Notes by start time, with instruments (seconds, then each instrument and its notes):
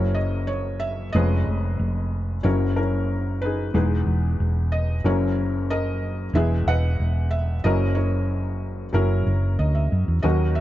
Already playing: fingered electric bass F#1, felt piano F#1 F#2 F#3 C#4 E4 A#4 C#5
0.15 felt piano D#5
0.47 felt piano C#5
0.80 felt piano E5
1.12 fingered electric bass F1, felt piano F1 F2 G#3 C#4 F4 G#4 B4 D#5
1.47 fingered electric bass F1
1.79 fingered electric bass F1
2.43 fingered electric bass F#1, felt piano F#1 F#2 F#3 C#4 E4 A#4 C#5
2.76 felt piano C#4 E4 A#4
3.42 felt piano D#4 G#4 B4
3.74 fingered electric bass E1, felt piano E2 E3 G#3 D#4 G#4 B4
4.06 fingered electric bass E1
4.40 fingered electric bass E1
4.72 felt piano D#5
5.04 fingered electric bass F#1, felt piano F#1 F#2 F#3 C#4 E4 A#4 C#5
5.70 felt piano A#4 D#5
6.33 fingered electric bass E1, felt piano E2 E3 G#3 B3 E4 G#4 B4 E5
6.67 fingered electric bass E1, felt piano B4 D#5 F#5
7.00 fingered electric bass E1
7.31 felt piano E5
7.64 fingered electric bass F#1, felt piano F#1 F#2 F#3 C#4 E4 A#4 D#5
7.95 felt piano E4 A#4 C#5
8.93 fingered electric bass F#1, felt piano F#3 C#4 E4 A#4
9.26 fingered electric bass F#1
9.59 fingered electric bass D2, felt piano D#5
9.75 felt piano E5
9.92 fingered electric bass F#2
10.08 fingered electric bass E2
10.22 fingered electric bass D#2, felt piano D#2 D#3 F#3 C#4 F#4 A#4 D#5
10.55 felt piano E5